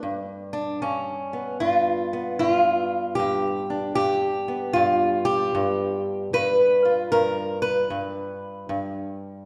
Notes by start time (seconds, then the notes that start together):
0.03 G2
0.53 D4
0.82 G2 C#4
1.33 B3
1.60 G2 F4
2.13 B3
2.39 G2 E4
2.50 F4
3.15 G2 G4
3.70 D4
3.95 G2 G4
4.48 B3
4.73 G2 F4
5.25 G4
5.55 G2
6.33 G2 B4
6.85 F4
7.12 G2 A#4
7.62 B4
7.90 G2
8.69 G2